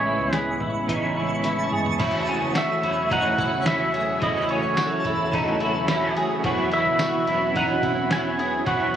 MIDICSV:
0, 0, Header, 1, 8, 480
1, 0, Start_track
1, 0, Tempo, 555556
1, 1726, Time_signature, 4, 2, 24, 8
1, 7744, End_track
2, 0, Start_track
2, 0, Title_t, "Synth texture"
2, 0, Program_c, 0, 99
2, 37, Note_on_c, 0, 85, 72
2, 762, Note_on_c, 0, 81, 79
2, 925, Note_off_c, 0, 85, 0
2, 936, Note_on_c, 0, 85, 54
2, 1098, Note_on_c, 0, 87, 61
2, 1766, Note_off_c, 0, 81, 0
2, 1912, Note_off_c, 0, 85, 0
2, 2053, Note_off_c, 0, 87, 0
2, 2219, Note_on_c, 0, 73, 69
2, 2380, Note_on_c, 0, 76, 58
2, 2535, Note_on_c, 0, 78, 58
2, 3214, Note_off_c, 0, 73, 0
2, 3355, Note_off_c, 0, 76, 0
2, 3492, Note_off_c, 0, 78, 0
2, 3653, Note_on_c, 0, 69, 96
2, 4651, Note_off_c, 0, 69, 0
2, 5808, Note_on_c, 0, 61, 94
2, 6809, Note_off_c, 0, 61, 0
2, 7744, End_track
3, 0, Start_track
3, 0, Title_t, "Pedal steel guitar"
3, 0, Program_c, 1, 26
3, 0, Note_on_c, 1, 73, 75
3, 297, Note_off_c, 1, 73, 0
3, 297, Note_on_c, 1, 71, 75
3, 491, Note_off_c, 1, 71, 0
3, 2227, Note_on_c, 1, 76, 93
3, 2698, Note_off_c, 1, 76, 0
3, 2701, Note_on_c, 1, 78, 111
3, 3172, Note_off_c, 1, 78, 0
3, 3175, Note_on_c, 1, 76, 98
3, 3652, Note_off_c, 1, 76, 0
3, 3656, Note_on_c, 1, 75, 99
3, 3892, Note_on_c, 1, 73, 80
3, 3898, Note_off_c, 1, 75, 0
3, 5295, Note_off_c, 1, 73, 0
3, 5819, Note_on_c, 1, 76, 84
3, 6536, Note_off_c, 1, 76, 0
3, 6540, Note_on_c, 1, 78, 98
3, 7017, Note_off_c, 1, 78, 0
3, 7021, Note_on_c, 1, 80, 118
3, 7075, Note_off_c, 1, 80, 0
3, 7079, Note_on_c, 1, 78, 98
3, 7133, Note_off_c, 1, 78, 0
3, 7141, Note_on_c, 1, 80, 114
3, 7487, Note_off_c, 1, 80, 0
3, 7491, Note_on_c, 1, 78, 92
3, 7744, Note_off_c, 1, 78, 0
3, 7744, End_track
4, 0, Start_track
4, 0, Title_t, "Clean electric guitar"
4, 0, Program_c, 2, 27
4, 48, Note_on_c, 2, 64, 72
4, 282, Note_off_c, 2, 64, 0
4, 286, Note_on_c, 2, 68, 76
4, 521, Note_off_c, 2, 68, 0
4, 525, Note_on_c, 2, 64, 62
4, 764, Note_on_c, 2, 63, 80
4, 766, Note_off_c, 2, 64, 0
4, 1005, Note_off_c, 2, 63, 0
4, 1005, Note_on_c, 2, 64, 66
4, 1234, Note_off_c, 2, 64, 0
4, 1245, Note_on_c, 2, 64, 74
4, 1482, Note_off_c, 2, 64, 0
4, 1486, Note_on_c, 2, 68, 61
4, 1722, Note_off_c, 2, 68, 0
4, 1726, Note_on_c, 2, 64, 92
4, 1966, Note_off_c, 2, 64, 0
4, 1967, Note_on_c, 2, 61, 81
4, 2206, Note_on_c, 2, 66, 88
4, 2207, Note_off_c, 2, 61, 0
4, 2440, Note_off_c, 2, 66, 0
4, 2443, Note_on_c, 2, 64, 73
4, 2685, Note_off_c, 2, 64, 0
4, 2685, Note_on_c, 2, 63, 86
4, 2925, Note_off_c, 2, 63, 0
4, 2927, Note_on_c, 2, 64, 78
4, 3158, Note_off_c, 2, 64, 0
4, 3169, Note_on_c, 2, 64, 89
4, 3406, Note_off_c, 2, 64, 0
4, 3409, Note_on_c, 2, 68, 74
4, 3644, Note_off_c, 2, 68, 0
4, 3647, Note_on_c, 2, 64, 93
4, 3887, Note_off_c, 2, 64, 0
4, 3893, Note_on_c, 2, 61, 80
4, 4130, Note_off_c, 2, 61, 0
4, 4132, Note_on_c, 2, 66, 92
4, 4364, Note_off_c, 2, 66, 0
4, 4367, Note_on_c, 2, 64, 78
4, 4607, Note_off_c, 2, 64, 0
4, 4609, Note_on_c, 2, 63, 93
4, 4847, Note_on_c, 2, 64, 78
4, 4848, Note_off_c, 2, 63, 0
4, 5078, Note_off_c, 2, 64, 0
4, 5089, Note_on_c, 2, 64, 91
4, 5323, Note_off_c, 2, 64, 0
4, 5326, Note_on_c, 2, 68, 78
4, 5566, Note_off_c, 2, 68, 0
4, 5571, Note_on_c, 2, 66, 100
4, 5809, Note_off_c, 2, 66, 0
4, 5813, Note_on_c, 2, 64, 81
4, 6045, Note_off_c, 2, 64, 0
4, 6048, Note_on_c, 2, 66, 93
4, 6287, Note_off_c, 2, 66, 0
4, 6291, Note_on_c, 2, 64, 77
4, 6528, Note_off_c, 2, 64, 0
4, 6530, Note_on_c, 2, 63, 93
4, 6768, Note_off_c, 2, 63, 0
4, 6770, Note_on_c, 2, 64, 75
4, 7002, Note_off_c, 2, 64, 0
4, 7012, Note_on_c, 2, 64, 82
4, 7242, Note_off_c, 2, 64, 0
4, 7246, Note_on_c, 2, 68, 77
4, 7485, Note_off_c, 2, 68, 0
4, 7488, Note_on_c, 2, 66, 98
4, 7727, Note_off_c, 2, 66, 0
4, 7744, End_track
5, 0, Start_track
5, 0, Title_t, "Clean electric guitar"
5, 0, Program_c, 3, 27
5, 0, Note_on_c, 3, 45, 71
5, 0, Note_on_c, 3, 52, 67
5, 0, Note_on_c, 3, 56, 69
5, 0, Note_on_c, 3, 61, 73
5, 0, Note_on_c, 3, 64, 67
5, 741, Note_off_c, 3, 45, 0
5, 752, Note_on_c, 3, 45, 72
5, 766, Note_off_c, 3, 52, 0
5, 770, Note_on_c, 3, 52, 79
5, 774, Note_off_c, 3, 56, 0
5, 783, Note_on_c, 3, 56, 83
5, 794, Note_off_c, 3, 61, 0
5, 798, Note_on_c, 3, 61, 85
5, 806, Note_off_c, 3, 64, 0
5, 810, Note_on_c, 3, 64, 86
5, 1715, Note_off_c, 3, 52, 0
5, 1718, Note_on_c, 3, 52, 89
5, 1719, Note_off_c, 3, 45, 0
5, 1725, Note_off_c, 3, 56, 0
5, 1728, Note_on_c, 3, 57, 90
5, 1736, Note_off_c, 3, 61, 0
5, 1739, Note_on_c, 3, 61, 88
5, 1743, Note_off_c, 3, 64, 0
5, 1746, Note_on_c, 3, 66, 105
5, 2430, Note_off_c, 3, 66, 0
5, 2434, Note_on_c, 3, 66, 55
5, 2444, Note_off_c, 3, 61, 0
5, 2447, Note_off_c, 3, 57, 0
5, 2454, Note_on_c, 3, 61, 47
5, 2460, Note_off_c, 3, 52, 0
5, 2473, Note_on_c, 3, 57, 42
5, 2669, Note_on_c, 3, 52, 60
5, 2674, Note_off_c, 3, 57, 0
5, 2680, Note_off_c, 3, 66, 0
5, 2685, Note_on_c, 3, 57, 67
5, 2686, Note_off_c, 3, 61, 0
5, 2696, Note_on_c, 3, 61, 61
5, 2706, Note_on_c, 3, 66, 64
5, 3155, Note_off_c, 3, 52, 0
5, 3158, Note_on_c, 3, 52, 67
5, 3160, Note_off_c, 3, 57, 0
5, 3170, Note_on_c, 3, 57, 68
5, 3171, Note_off_c, 3, 61, 0
5, 3184, Note_off_c, 3, 66, 0
5, 3186, Note_on_c, 3, 61, 68
5, 3197, Note_on_c, 3, 66, 74
5, 3625, Note_off_c, 3, 52, 0
5, 3628, Note_on_c, 3, 52, 84
5, 3643, Note_off_c, 3, 57, 0
5, 3654, Note_on_c, 3, 57, 89
5, 3656, Note_off_c, 3, 61, 0
5, 3673, Note_on_c, 3, 61, 82
5, 3686, Note_off_c, 3, 66, 0
5, 3689, Note_on_c, 3, 66, 83
5, 4587, Note_off_c, 3, 52, 0
5, 4591, Note_on_c, 3, 52, 71
5, 4597, Note_off_c, 3, 57, 0
5, 4607, Note_on_c, 3, 57, 71
5, 4609, Note_off_c, 3, 61, 0
5, 4620, Note_on_c, 3, 61, 73
5, 4627, Note_off_c, 3, 66, 0
5, 4630, Note_on_c, 3, 66, 83
5, 5073, Note_off_c, 3, 52, 0
5, 5076, Note_on_c, 3, 52, 73
5, 5081, Note_off_c, 3, 57, 0
5, 5091, Note_on_c, 3, 57, 73
5, 5093, Note_off_c, 3, 61, 0
5, 5102, Note_off_c, 3, 66, 0
5, 5104, Note_on_c, 3, 61, 82
5, 5115, Note_on_c, 3, 66, 78
5, 5555, Note_off_c, 3, 52, 0
5, 5558, Note_on_c, 3, 52, 87
5, 5566, Note_off_c, 3, 57, 0
5, 5570, Note_on_c, 3, 54, 91
5, 5574, Note_off_c, 3, 61, 0
5, 5577, Note_on_c, 3, 59, 98
5, 5583, Note_off_c, 3, 66, 0
5, 5586, Note_on_c, 3, 64, 110
5, 6274, Note_off_c, 3, 64, 0
5, 6278, Note_on_c, 3, 64, 56
5, 6288, Note_off_c, 3, 54, 0
5, 6296, Note_off_c, 3, 59, 0
5, 6299, Note_on_c, 3, 59, 49
5, 6318, Note_on_c, 3, 54, 45
5, 6344, Note_off_c, 3, 52, 0
5, 6517, Note_on_c, 3, 52, 62
5, 6522, Note_off_c, 3, 64, 0
5, 6523, Note_off_c, 3, 54, 0
5, 6533, Note_off_c, 3, 59, 0
5, 6534, Note_on_c, 3, 54, 67
5, 6545, Note_on_c, 3, 59, 70
5, 6556, Note_on_c, 3, 64, 69
5, 6992, Note_off_c, 3, 52, 0
5, 6996, Note_on_c, 3, 52, 62
5, 6999, Note_off_c, 3, 54, 0
5, 7009, Note_on_c, 3, 54, 69
5, 7017, Note_off_c, 3, 59, 0
5, 7021, Note_on_c, 3, 59, 72
5, 7029, Note_off_c, 3, 64, 0
5, 7032, Note_on_c, 3, 64, 67
5, 7477, Note_off_c, 3, 52, 0
5, 7480, Note_on_c, 3, 52, 84
5, 7481, Note_off_c, 3, 54, 0
5, 7491, Note_on_c, 3, 54, 80
5, 7495, Note_off_c, 3, 59, 0
5, 7499, Note_on_c, 3, 59, 92
5, 7503, Note_off_c, 3, 64, 0
5, 7507, Note_on_c, 3, 64, 84
5, 7744, Note_off_c, 3, 52, 0
5, 7744, Note_off_c, 3, 54, 0
5, 7744, Note_off_c, 3, 59, 0
5, 7744, Note_off_c, 3, 64, 0
5, 7744, End_track
6, 0, Start_track
6, 0, Title_t, "Analog synth pad"
6, 0, Program_c, 4, 89
6, 0, Note_on_c, 4, 49, 76
6, 0, Note_on_c, 4, 52, 66
6, 0, Note_on_c, 4, 56, 66
6, 0, Note_on_c, 4, 59, 70
6, 0, Note_on_c, 4, 64, 84
6, 1689, Note_off_c, 4, 52, 0
6, 1689, Note_off_c, 4, 64, 0
6, 1690, Note_off_c, 4, 49, 0
6, 1693, Note_off_c, 4, 56, 0
6, 1703, Note_off_c, 4, 59, 0
6, 1718, Note_on_c, 4, 54, 77
6, 1720, Note_on_c, 4, 49, 84
6, 1721, Note_on_c, 4, 52, 74
6, 1721, Note_on_c, 4, 57, 78
6, 1721, Note_on_c, 4, 64, 88
6, 5529, Note_off_c, 4, 49, 0
6, 5529, Note_off_c, 4, 57, 0
6, 5529, Note_off_c, 4, 64, 0
6, 5562, Note_on_c, 4, 64, 76
6, 5563, Note_on_c, 4, 66, 96
6, 5564, Note_on_c, 4, 47, 85
6, 7744, Note_off_c, 4, 47, 0
6, 7744, Note_off_c, 4, 52, 0
6, 7744, Note_off_c, 4, 54, 0
6, 7744, Note_off_c, 4, 64, 0
6, 7744, Note_off_c, 4, 66, 0
6, 7744, End_track
7, 0, Start_track
7, 0, Title_t, "Analog synth bass"
7, 0, Program_c, 5, 38
7, 0, Note_on_c, 5, 33, 102
7, 148, Note_off_c, 5, 33, 0
7, 164, Note_on_c, 5, 37, 89
7, 507, Note_off_c, 5, 37, 0
7, 523, Note_on_c, 5, 33, 84
7, 752, Note_off_c, 5, 33, 0
7, 765, Note_on_c, 5, 33, 94
7, 1451, Note_off_c, 5, 33, 0
7, 1725, Note_on_c, 5, 28, 114
7, 2068, Note_off_c, 5, 28, 0
7, 2085, Note_on_c, 5, 30, 89
7, 2427, Note_off_c, 5, 30, 0
7, 2442, Note_on_c, 5, 28, 100
7, 2672, Note_off_c, 5, 28, 0
7, 2685, Note_on_c, 5, 28, 116
7, 3611, Note_off_c, 5, 28, 0
7, 3644, Note_on_c, 5, 28, 107
7, 3987, Note_off_c, 5, 28, 0
7, 4006, Note_on_c, 5, 30, 93
7, 4348, Note_off_c, 5, 30, 0
7, 4363, Note_on_c, 5, 28, 98
7, 4593, Note_off_c, 5, 28, 0
7, 4604, Note_on_c, 5, 28, 119
7, 5291, Note_off_c, 5, 28, 0
7, 5566, Note_on_c, 5, 28, 123
7, 5908, Note_off_c, 5, 28, 0
7, 5926, Note_on_c, 5, 30, 94
7, 6268, Note_off_c, 5, 30, 0
7, 6285, Note_on_c, 5, 28, 92
7, 6514, Note_off_c, 5, 28, 0
7, 6526, Note_on_c, 5, 28, 115
7, 7451, Note_off_c, 5, 28, 0
7, 7485, Note_on_c, 5, 28, 115
7, 7744, Note_off_c, 5, 28, 0
7, 7744, End_track
8, 0, Start_track
8, 0, Title_t, "Drums"
8, 283, Note_on_c, 9, 38, 104
8, 287, Note_on_c, 9, 42, 72
8, 369, Note_off_c, 9, 38, 0
8, 374, Note_off_c, 9, 42, 0
8, 523, Note_on_c, 9, 36, 78
8, 609, Note_off_c, 9, 36, 0
8, 765, Note_on_c, 9, 36, 79
8, 770, Note_on_c, 9, 42, 67
8, 851, Note_off_c, 9, 36, 0
8, 856, Note_off_c, 9, 42, 0
8, 1243, Note_on_c, 9, 38, 47
8, 1243, Note_on_c, 9, 42, 68
8, 1330, Note_off_c, 9, 38, 0
8, 1330, Note_off_c, 9, 42, 0
8, 1486, Note_on_c, 9, 45, 79
8, 1573, Note_off_c, 9, 45, 0
8, 1609, Note_on_c, 9, 43, 76
8, 1695, Note_off_c, 9, 43, 0
8, 1724, Note_on_c, 9, 49, 103
8, 1725, Note_on_c, 9, 51, 56
8, 1726, Note_on_c, 9, 36, 120
8, 1811, Note_off_c, 9, 49, 0
8, 1811, Note_off_c, 9, 51, 0
8, 1812, Note_off_c, 9, 36, 0
8, 1963, Note_on_c, 9, 51, 36
8, 2049, Note_off_c, 9, 51, 0
8, 2205, Note_on_c, 9, 38, 115
8, 2207, Note_on_c, 9, 54, 64
8, 2210, Note_on_c, 9, 51, 70
8, 2292, Note_off_c, 9, 38, 0
8, 2293, Note_off_c, 9, 54, 0
8, 2296, Note_off_c, 9, 51, 0
8, 2448, Note_on_c, 9, 51, 42
8, 2535, Note_off_c, 9, 51, 0
8, 2685, Note_on_c, 9, 36, 96
8, 2691, Note_on_c, 9, 51, 62
8, 2772, Note_off_c, 9, 36, 0
8, 2777, Note_off_c, 9, 51, 0
8, 2923, Note_on_c, 9, 36, 101
8, 2923, Note_on_c, 9, 51, 40
8, 3010, Note_off_c, 9, 36, 0
8, 3010, Note_off_c, 9, 51, 0
8, 3162, Note_on_c, 9, 38, 111
8, 3162, Note_on_c, 9, 51, 66
8, 3164, Note_on_c, 9, 54, 65
8, 3248, Note_off_c, 9, 38, 0
8, 3248, Note_off_c, 9, 51, 0
8, 3251, Note_off_c, 9, 54, 0
8, 3405, Note_on_c, 9, 51, 45
8, 3491, Note_off_c, 9, 51, 0
8, 3643, Note_on_c, 9, 51, 62
8, 3644, Note_on_c, 9, 36, 122
8, 3730, Note_off_c, 9, 36, 0
8, 3730, Note_off_c, 9, 51, 0
8, 3877, Note_on_c, 9, 51, 37
8, 3964, Note_off_c, 9, 51, 0
8, 4123, Note_on_c, 9, 38, 113
8, 4124, Note_on_c, 9, 54, 65
8, 4127, Note_on_c, 9, 51, 68
8, 4209, Note_off_c, 9, 38, 0
8, 4211, Note_off_c, 9, 54, 0
8, 4213, Note_off_c, 9, 51, 0
8, 4362, Note_on_c, 9, 36, 100
8, 4362, Note_on_c, 9, 51, 43
8, 4448, Note_off_c, 9, 51, 0
8, 4449, Note_off_c, 9, 36, 0
8, 4604, Note_on_c, 9, 36, 96
8, 4608, Note_on_c, 9, 51, 64
8, 4691, Note_off_c, 9, 36, 0
8, 4695, Note_off_c, 9, 51, 0
8, 4841, Note_on_c, 9, 51, 39
8, 4928, Note_off_c, 9, 51, 0
8, 5082, Note_on_c, 9, 38, 118
8, 5082, Note_on_c, 9, 51, 68
8, 5084, Note_on_c, 9, 54, 63
8, 5168, Note_off_c, 9, 38, 0
8, 5168, Note_off_c, 9, 51, 0
8, 5171, Note_off_c, 9, 54, 0
8, 5327, Note_on_c, 9, 51, 47
8, 5413, Note_off_c, 9, 51, 0
8, 5564, Note_on_c, 9, 51, 63
8, 5565, Note_on_c, 9, 36, 118
8, 5650, Note_off_c, 9, 51, 0
8, 5652, Note_off_c, 9, 36, 0
8, 5801, Note_on_c, 9, 51, 38
8, 5888, Note_off_c, 9, 51, 0
8, 6041, Note_on_c, 9, 38, 119
8, 6043, Note_on_c, 9, 54, 67
8, 6045, Note_on_c, 9, 51, 71
8, 6128, Note_off_c, 9, 38, 0
8, 6129, Note_off_c, 9, 54, 0
8, 6132, Note_off_c, 9, 51, 0
8, 6284, Note_on_c, 9, 51, 44
8, 6371, Note_off_c, 9, 51, 0
8, 6525, Note_on_c, 9, 36, 92
8, 6529, Note_on_c, 9, 51, 66
8, 6612, Note_off_c, 9, 36, 0
8, 6615, Note_off_c, 9, 51, 0
8, 6764, Note_on_c, 9, 36, 104
8, 6765, Note_on_c, 9, 51, 41
8, 6850, Note_off_c, 9, 36, 0
8, 6851, Note_off_c, 9, 51, 0
8, 7005, Note_on_c, 9, 38, 117
8, 7005, Note_on_c, 9, 51, 66
8, 7007, Note_on_c, 9, 54, 64
8, 7091, Note_off_c, 9, 38, 0
8, 7091, Note_off_c, 9, 51, 0
8, 7094, Note_off_c, 9, 54, 0
8, 7251, Note_on_c, 9, 51, 48
8, 7337, Note_off_c, 9, 51, 0
8, 7486, Note_on_c, 9, 36, 122
8, 7486, Note_on_c, 9, 51, 59
8, 7572, Note_off_c, 9, 36, 0
8, 7572, Note_off_c, 9, 51, 0
8, 7744, End_track
0, 0, End_of_file